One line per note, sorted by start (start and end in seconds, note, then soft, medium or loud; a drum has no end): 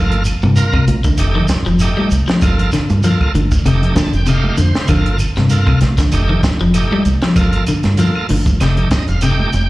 0.00 0.33 G1 medium
0.00 0.23 A#3 medium
0.00 0.23 F4 medium
0.00 0.24 A4 medium
0.12 closed hi-hat soft
0.25 closed hi-hat soft
0.25 claves medium
0.25 shekere medium
0.42 0.78 G2 medium
0.42 0.59 C3 medium
0.42 high conga medium
0.42 shekere soft
0.56 0.85 A#3 medium
0.56 0.85 F4 medium
0.56 0.85 A#4 medium
0.56 closed hi-hat medium
0.56 shekere medium
0.73 0.90 C3 medium
0.73 kick medium
0.73 claves medium
0.87 1.12 A#1 medium
0.87 closed hi-hat soft
0.87 high conga medium
0.87 shekere soft
1.04 1.21 D3 medium
1.04 kick medium
1.04 closed hi-hat soft
1.04 high conga medium
1.04 shekere medium
1.17 1.43 F1 medium
1.17 1.47 A3 medium
1.17 1.47 D#4 medium
1.17 1.47 G4 medium
1.17 closed hi-hat medium
1.17 claves medium
1.17 shekere medium
1.35 1.51 D#3 medium
1.35 low conga medium
1.48 kick medium
1.48 snare medium
1.48 closed hi-hat medium
1.48 high conga medium
1.48 shekere medium
1.66 1.91 F1 medium
1.66 1.82 F3 medium
1.66 shekere soft
1.79 2.09 A3 medium
1.79 2.09 D#4 medium
1.79 2.09 G4 medium
1.79 closed hi-hat medium
1.79 claves medium
1.79 shekere medium
1.97 2.13 G3 medium
1.97 high conga medium
2.10 2.25 C2 medium
2.10 closed hi-hat medium
2.10 shekere medium
2.27 2.44 F3 medium
2.27 snare medium
2.27 closed hi-hat soft
2.27 shekere soft
2.41 2.67 G1 medium
2.41 2.70 A#3 medium
2.41 2.71 F4 medium
2.41 2.71 A4 medium
2.41 kick medium
2.41 closed hi-hat medium
2.41 low conga medium
2.41 claves medium
2.41 shekere medium
2.59 closed hi-hat soft
2.72 2.89 D3 medium
2.72 snare soft
2.72 closed hi-hat soft
2.72 claves medium
2.72 shekere medium
2.89 3.15 G2 medium
2.89 closed hi-hat soft
2.89 high conga medium
2.89 shekere soft
3.03 3.20 F3 medium
3.03 3.32 A#3 medium
3.03 3.32 F4 medium
3.03 3.33 A4 medium
3.03 closed hi-hat medium
3.03 shekere medium
3.21 kick medium
3.21 claves medium
3.35 3.59 G1 medium
3.35 3.51 D3 medium
3.35 closed hi-hat soft
3.35 high conga medium
3.35 shekere soft
3.51 kick medium
3.51 closed hi-hat soft
3.51 shekere medium
3.65 3.90 F1 loud
3.65 3.82 C3 medium
3.65 3.94 A3 medium
3.65 3.94 D#4 medium
3.65 3.95 G4 medium
3.65 closed hi-hat medium
3.65 claves medium
3.65 shekere medium
3.82 closed hi-hat soft
3.82 low conga medium
3.96 4.12 D3 medium
3.96 4.13 A5 medium
3.96 kick medium
3.96 snare medium
3.96 closed hi-hat soft
3.96 high conga medium
3.96 shekere medium
4.13 4.49 F1 medium
4.13 4.27 G5 medium
4.13 closed hi-hat soft
4.13 shekere soft
4.26 4.43 C3 medium
4.26 4.56 A3 medium
4.26 4.56 D#4 medium
4.26 4.57 G4 medium
4.26 4.57 F5 medium
4.26 closed hi-hat medium
4.26 claves medium
4.26 shekere medium
4.44 high conga medium
4.57 4.72 F2 medium
4.57 4.74 D3 medium
4.57 4.88 C5 medium
4.57 closed hi-hat soft
4.57 high conga medium
4.57 shekere medium
4.74 snare medium
4.74 shekere soft
4.88 5.27 G1 medium
4.88 5.05 D3 medium
4.88 5.17 A#3 medium
4.88 5.18 F4 medium
4.88 5.18 A4 medium
4.88 kick loud
4.88 closed hi-hat medium
4.88 low conga medium
4.88 claves medium
4.88 shekere medium
5.06 closed hi-hat soft
5.19 closed hi-hat soft
5.19 claves medium
5.19 shekere medium
5.35 5.73 G2 medium
5.35 5.53 C3 medium
5.35 snare soft
5.35 high conga medium
5.35 shekere soft
5.50 5.79 A#3 medium
5.50 5.80 F4 medium
5.50 5.80 A4 medium
5.50 closed hi-hat medium
5.50 shekere medium
5.67 5.83 C3 medium
5.67 kick medium
5.67 claves medium
5.81 6.07 A#1 medium
5.81 snare soft
5.81 closed hi-hat soft
5.81 high conga medium
5.81 shekere soft
5.98 6.15 D3 medium
5.98 kick medium
5.98 snare soft
5.98 closed hi-hat soft
5.98 low conga medium
5.98 shekere medium
6.12 6.38 F1 loud
6.12 6.41 A3 medium
6.12 6.42 D#4 medium
6.12 6.42 G4 medium
6.12 closed hi-hat medium
6.12 claves medium
6.12 shekere medium
6.29 6.45 D#3 medium
6.29 low conga medium
6.43 kick medium
6.43 snare medium
6.43 closed hi-hat soft
6.43 high conga medium
6.43 shekere medium
6.60 6.85 F1 medium
6.60 6.77 F3 medium
6.60 shekere soft
6.74 7.03 A3 medium
6.74 7.03 D#4 medium
6.74 7.04 G4 medium
6.74 closed hi-hat medium
6.74 claves medium
6.74 shekere medium
6.91 7.08 G3 medium
6.91 high conga medium
7.05 7.19 C2 medium
7.05 closed hi-hat medium
7.05 high conga medium
7.05 shekere medium
7.22 7.39 F3 medium
7.22 snare medium
7.22 closed hi-hat soft
7.22 shekere soft
7.36 7.61 G1 medium
7.36 7.64 A#3 medium
7.36 7.65 F4 medium
7.36 7.65 A4 medium
7.36 kick medium
7.36 closed hi-hat medium
7.36 low conga medium
7.36 claves medium
7.36 shekere medium
7.53 closed hi-hat soft
7.66 7.84 D3 medium
7.66 closed hi-hat soft
7.66 claves medium
7.66 shekere medium
7.83 8.09 G2 medium
7.83 snare soft
7.83 closed hi-hat soft
7.83 high conga medium
7.83 shekere soft
7.97 8.15 F3 medium
7.97 8.26 A#3 medium
7.97 8.27 F4 medium
7.97 8.27 A4 medium
7.97 closed hi-hat medium
7.97 shekere medium
8.15 claves medium
8.29 8.54 G1 medium
8.29 8.46 D3 medium
8.29 open hi-hat medium
8.29 high conga medium
8.29 shekere soft
8.46 kick medium
8.46 closed hi-hat soft
8.46 high conga medium
8.46 low conga medium
8.46 shekere medium
8.60 8.85 F1 medium
8.60 8.77 C3 medium
8.60 8.89 A3 medium
8.60 8.89 D#4 medium
8.60 8.89 G4 medium
8.60 snare soft
8.60 closed hi-hat medium
8.60 claves medium
8.60 shekere medium
8.77 closed hi-hat soft
8.77 low conga medium
8.91 9.07 D#5 medium
8.91 muted clean electric guitar stroke medium
8.91 kick medium
8.91 snare medium
8.91 closed hi-hat soft
8.91 high conga medium
8.91 shekere medium
9.08 9.44 F1 medium
9.08 9.21 F5 medium
9.08 closed hi-hat soft
9.08 shekere soft
9.21 9.39 C3 medium
9.21 9.50 A3 medium
9.21 9.50 D#4 medium
9.21 9.51 G4 medium
9.21 9.70 G5 medium
9.21 closed hi-hat medium
9.21 claves medium
9.21 shekere medium
9.40 high conga medium
9.53 9.67 F1 medium
9.53 closed hi-hat soft
9.53 high conga medium
9.53 shekere medium